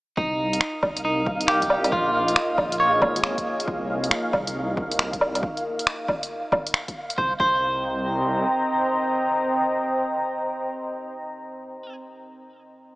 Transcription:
0.17 C2 D#4 A#4 D#5 F5, kick
0.53 closed hi-hat
0.61 finger snap
0.83 C2, kick, low woodblock
0.97 closed hi-hat
1.05 D#4
1.26 kick
1.41 closed hi-hat
1.48 G4, finger snap
1.62 kick, closed hi-hat
1.70 low woodblock
1.84 closed hi-hat, low woodblock
1.92 A#1 A#3 F4 G#4 C#5, kick
2.28 closed hi-hat
2.36 finger snap
2.58 A#1, kick, low woodblock
2.72 closed hi-hat
2.80 C#5
3.02 G#1, kick, low woodblock
3.16 closed hi-hat
3.24 finger snap
3.38 kick, closed hi-hat
3.60 closed hi-hat
3.68 C2 D#4 A#4, kick
4.04 closed hi-hat
4.11 finger snap
4.33 C2, kick, low woodblock
4.47 closed hi-hat
4.77 kick
4.91 closed hi-hat
4.99 finger snap
5.13 kick, closed hi-hat
5.21 low woodblock
5.35 closed hi-hat, low woodblock
5.43 kick
5.57 closed hi-hat
5.79 closed hi-hat
5.87 finger snap
6.08 kick, low woodblock
6.23 closed hi-hat
6.52 kick, low woodblock
6.67 closed hi-hat
6.74 finger snap
6.88 kick, closed hi-hat
7.10 closed hi-hat
7.18 C2 C4 C5 D#5 G5 A#5, kick
7.40 C2 C5, kick

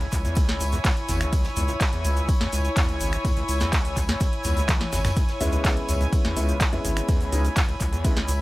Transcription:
Already playing: E4 C#5 G#5 C#6
0.01 C#2, closed hi-hat
0.12 C#2, kick, clap, open hi-hat, tambourine, shaker
0.25 E2, closed hi-hat, shaker
0.35 C#2, kick, closed hi-hat, ride, tambourine, shaker
0.49 snare, closed hi-hat
0.60 B1 C#2, open hi-hat, tambourine, shaker
0.72 E2, closed hi-hat, shaker
0.84 C#2, kick, snare, clap, closed hi-hat, ride, tambourine, shaker
0.97 closed hi-hat
1.08 G#1 E2, snare, open hi-hat, tambourine, shaker
1.21 C#2, finger snap, closed hi-hat, shaker
1.33 kick, closed hi-hat, ride, tambourine, shaker
1.44 B1, snare, closed hi-hat
1.56 C#2 E2, open hi-hat, tambourine, shaker
1.68 C#2, closed hi-hat, shaker
1.81 kick, snare, clap, closed hi-hat, ride, tambourine, shaker
1.93 E2, closed hi-hat
2.04 C#2, open hi-hat, tambourine, shaker
2.17 closed hi-hat, shaker
2.29 B1, kick, closed hi-hat, ride, tambourine, shaker
2.41 E2, snare, closed hi-hat
2.52 C#2, open hi-hat, tambourine, shaker
2.65 closed hi-hat, shaker
2.76 E2, kick, snare, clap, closed hi-hat, ride, tambourine, shaker
2.89 C#2, closed hi-hat
3.00 G#1, open hi-hat, tambourine, shaker
3.13 B1, finger snap, closed hi-hat, shaker
3.25 E2, kick, closed hi-hat, ride, tambourine, shaker
3.37 C#2, closed hi-hat
3.48 C#2, open hi-hat, tambourine, shaker
3.60 E2, snare, closed hi-hat, shaker
3.73 C#2, kick, snare, clap, closed hi-hat, ride, tambourine, shaker
3.85 open hi-hat
3.97 B1 C#2, kick, clap, open hi-hat, tambourine, shaker
4.08 E2, snare, closed hi-hat, shaker
4.20 C#2, kick, closed hi-hat, ride, tambourine, shaker
4.33 closed hi-hat
4.44 C#2 E2, open hi-hat, tambourine, shaker
4.57 C#2, closed hi-hat, shaker
4.68 finger snap, kick, snare, clap, closed hi-hat, high tom, ride, tambourine, shaker
4.81 B1, snare, closed hi-hat, high tom
4.92 G#1 E2, snare, open hi-hat, tambourine, shaker
5.05 C#2, finger snap, snare, closed hi-hat, mid tom, tambourine, shaker
5.16 C#2, kick, closed hi-hat, ride, tambourine, shaker
5.29 snare, closed hi-hat
5.41 C#2 E2 G#3 B3 C#4 E4, open hi-hat, tambourine, shaker
5.53 C#2, closed hi-hat, shaker
5.64 kick, snare, clap, closed hi-hat, ride, tambourine, shaker
5.77 B1, closed hi-hat
5.89 C#2 E2, open hi-hat, tambourine, shaker
6.01 C#2, closed hi-hat, shaker
6.13 kick, closed hi-hat, ride, tambourine, shaker
6.25 E2, snare, closed hi-hat
6.36 C#2 G#3 B3 C#4 E4, open hi-hat, tambourine, shaker
6.49 B5, closed hi-hat, shaker
6.60 B1, kick, snare, clap, closed hi-hat, ride, tambourine, shaker
6.73 E2 G#3 B3 C#4 E4, closed hi-hat
6.85 G#1 C#2, open hi-hat, tambourine, shaker
6.97 finger snap, closed hi-hat, shaker
7.08 E2, kick, closed hi-hat, ride, tambourine, shaker
7.21 C#2, closed hi-hat
7.32 C#2 G#3 B3 C#4 D#4, open hi-hat, tambourine, shaker
7.45 B1, closed hi-hat, shaker
7.56 E2, kick, snare, clap, closed hi-hat, ride, tambourine, shaker
7.69 C#2, closed hi-hat
7.80 C#2, kick, clap, open hi-hat, tambourine, shaker
7.93 E2, closed hi-hat, shaker
8.04 C#2 G#3 B3 C#4 E4, kick, closed hi-hat, ride, tambourine, shaker
8.17 snare, closed hi-hat
8.28 B1 C#2, open hi-hat, tambourine, shaker

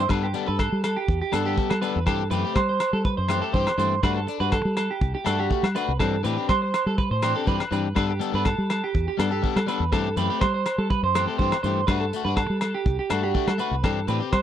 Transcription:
0.09 G2 G3 B3 D4 A4 B4, kick, cross-stick, low agogo
0.23 G4
0.34 G3 B3 D4 A4, closed hi-hat
0.46 G2 A4 B4, muted clean electric guitar stroke
0.59 A4, kick, cross-stick, low agogo
0.72 G3
0.84 A4, cross-stick, closed hi-hat, low agogo
0.97 G4
1.08 E2, kick
1.22 G4
1.32 G2 G3 B3 D4 A4, cross-stick, closed hi-hat, low agogo
1.45 B3 D4 G4 A4
1.56 G3 B3 A4, kick
1.70 G3 A4, cross-stick, low agogo
1.82 G3 B3 D4 A4 B4, closed hi-hat
1.96 E2
2.06 G2 E3 C4 G4 A4, muted clean electric guitar stroke, kick, cross-stick, low agogo
2.30 F#2 E3 A3 C4 G4 B4, closed hi-hat
2.45 A3 C4 G4
2.56 G3 C5, kick, cross-stick, low agogo
2.69 C5
2.80 cross-stick, closed hi-hat, low agogo
2.93 G3 A4
3.05 B4, kick
3.17 F#2 C5
3.28 E3 A3 C4 G4, cross-stick, closed hi-hat, low agogo
3.42 A3 G4 A4
3.53 G2 E3 C4 G4 C5, muted clean electric guitar stroke, kick
3.67 cross-stick, low agogo
3.78 G2 E3 A3 C4 C5, closed hi-hat
4.03 G2 A3 D4 F#4 B4, kick, cross-stick, low agogo
4.16 A4
4.27 D4, muted clean electric guitar stroke, closed hi-hat
4.40 G2 D4 F#4 B4
4.52 A4, kick, cross-stick, low agogo
4.65 G3
4.77 A4, cross-stick, closed hi-hat, low agogo
4.91 G4
5.01 C2, kick
5.15 G4
5.25 G2 A3 D4 F#4 A4, cross-stick, closed hi-hat, low agogo
5.38 D4 F#4 G4
5.50 A3 F#4, kick
5.63 G3, cross-stick, low agogo
5.75 A3 D4 F#4 B4, closed hi-hat
5.88 C2
5.99 G2 E3 C4 D4 A4, muted clean electric guitar stroke, kick, cross-stick, low agogo
6.23 A2 E3 C4 D4 G4 B4, closed hi-hat
6.37 C4 D4 G4
6.49 G3 C5, kick, cross-stick, low agogo
6.62 C5
6.74 cross-stick, closed hi-hat, low agogo
6.86 G3 A4
6.98 B4, kick
7.11 A2 C5
7.22 E3 C4 D4 G4, cross-stick, closed hi-hat, low agogo
7.35 C4 D4 G4 A4
7.46 G2 E3 C4 D4 G4 B4, kick
7.60 cross-stick, low agogo
7.71 G2 E3 C4 D4 G4 B4, closed hi-hat
7.95 G2 G3 B3 D4 A4 B4, kick, cross-stick, low agogo
8.10 G4
8.20 G3 B3 D4 A4, closed hi-hat
8.33 G2 B3 D4 A4 B4
8.45 A4, kick, cross-stick, low agogo
8.58 G3
8.70 A4, cross-stick, closed hi-hat, low agogo
8.84 G4
8.95 E2, kick
9.08 G4
9.17 G2 G3 B3 D4 A4, cross-stick, closed hi-hat, low agogo
9.31 G4 A4, muted clean electric guitar stroke
9.42 G3 B3 D4 A4, kick
9.56 G3 A4, cross-stick, low agogo
9.67 G3 B3 D4 A4 B4, closed hi-hat
9.80 E2
9.92 G2 E3 A3 C4 G4 A4, kick, cross-stick, low agogo
10.17 F#2 E3 A3 C4 G4 B4, closed hi-hat
10.30 A3 C4 G4
10.41 G3 C5, kick, cross-stick, low agogo
10.54 C5
10.66 cross-stick, closed hi-hat, low agogo
10.78 G3 A4
10.90 B4, kick
11.03 F#2 C5
11.15 E3 A3 C4 G4, cross-stick, closed hi-hat, low agogo
11.27 A3 C4 G4 A4
11.38 G2 E3 A3 C4 G4 C5, kick
11.52 cross-stick, low agogo
11.63 G2 E3 A3 G4 C5, muted clean electric guitar stroke, closed hi-hat
11.87 G2 A3 D4 F#4 B4, kick, cross-stick, low agogo
12.00 A4
12.13 A3 F#4, closed hi-hat
12.25 G2 D4 F#4 B4
12.36 A4, kick, cross-stick, low agogo
12.50 G3
12.61 A4, cross-stick, closed hi-hat, low agogo
12.74 G4
12.86 C2, kick
12.99 G4
13.10 G2 A3 D4 F#4 A4, cross-stick, closed hi-hat, low agogo
13.23 D4 F#4 G4
13.34 A3 D4 F#4, kick
13.47 G3 A4, cross-stick, low agogo
13.58 A3 F#4 B4, muted clean electric guitar stroke, closed hi-hat
13.71 C2
13.84 G2 E3 C4 D4 G4 A4, kick, cross-stick, low agogo
14.08 A2 E3 C4 D4 G4 B4, closed hi-hat
14.20 C4 G4
14.32 G3 C5, kick, cross-stick, low agogo

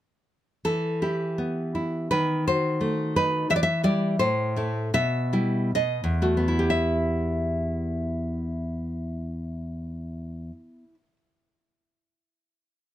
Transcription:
0.65 E3 A4
1.02 E4 G4
1.38 B3
1.75 E4
2.11 D#3 B4
2.47 F#4 C5
2.81 A3
3.16 D#4 B4
3.50 E3 E5
3.56 D5
3.63 E5
3.84 G3 E4 D5
4.19 A2 C5
4.56 A3 E4
4.94 B2 E5
5.33 G3 E4
5.75 B2 D#5
6.04 E2
6.22 A3 F#4
6.37 B3
6.48 E4
6.59 G4
6.70 E5

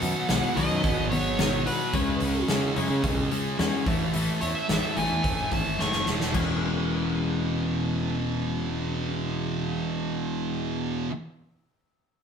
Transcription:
Already playing: F#5
0.02 F#2 B2 D#3 F#3 B3, open hi-hat
0.28 B1 B2 D#3 F#3 B3, snare, open hi-hat
0.56 B1 B2 D#3 F#3 B3 D#5, open hi-hat
0.71 F#2
0.84 G#1 B2 D#3 F#3 B3, kick, open hi-hat
1.10 B2 D#3 F#3 B3 C#5, open hi-hat
1.39 B2 D#3 F#3 B3, snare, open hi-hat
1.66 B2 D#3 F#3 B3 B4, open hi-hat
1.94 C#2 C#3 G#3 C#4, kick, open hi-hat
2.20 C#2 C#3 G#3 C#4, open hi-hat
2.48 C#3 G#3 C#4, snare, open hi-hat
2.75 F#2 C#3 G#3 C#4, open hi-hat
2.90 C#3
3.03 B1 C#3 G#3 C#4, kick, open hi-hat
3.31 C#3 G#3 C#4, open hi-hat
3.58 E2 C#3 G#3 C#4, snare, open hi-hat
3.86 A1 A2 E3 A3, kick, open hi-hat
4.13 A2 E3 A3, open hi-hat
4.41 E2 A2 E3 A3 C#5, open hi-hat
4.55 E5
4.69 A1 A2 E3 A3, snare, open hi-hat
4.96 A1 A2 E3 A3 G#5, open hi-hat
5.12 E2
5.23 F#1 A2 E3 A3, kick, open hi-hat
5.51 G#1 A2 E3 A3 A5, kick, open hi-hat
5.78 F#1 A2 E3 A3 C#6, snare
5.92 snare
6.06 E1 A2 E3 A3, snare
6.21 snare
6.33 E1 E2 B2 E3 G#3 C#4 G#4, kick, crash
6.37 E3 B4

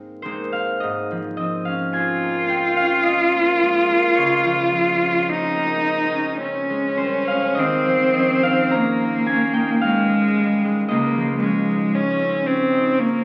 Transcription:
Already playing: G#2 G#3 A#3 C4 D#4
0.22 G#3 A#3 C4 D#4 C5
0.52 F5
0.80 G#2 D#5
1.11 F3
1.37 C4 D#5
1.65 C#4 F5
1.93 C4 F4 G#5
2.23 A#3
2.49 C4 G5
2.77 C#4 F5
3.03 C4 D#5
3.34 A#3
3.62 G#3
3.89 A#3
4.15 C#2 C#5
4.44 F3
4.73 C4
5.01 C#4
5.28 C4 D#4
5.55 A#3
5.84 C4
6.12 C#4
6.40 C4 C#4
6.70 G#3
6.97 G3 C5
7.27 G#3 F5
7.55 D#2 D#5
7.60 C4
7.86 F3
8.14 C#4 D#5
8.43 D#4 F5
8.71 C#4 A#5
8.75 A#3
9.02 C4
9.26 C#4 G#5
9.54 D#4 G5
9.81 G#3 C#4 F5
10.09 G#3
10.37 G3
10.64 G#3
10.88 C#2 A#3 D#5
11.16 F3
11.39 G#3 C#4
11.69 D#4
11.94 C#4
12.20 C4
12.47 C4 C#4
12.72 D#4
12.98 A#3 C#4

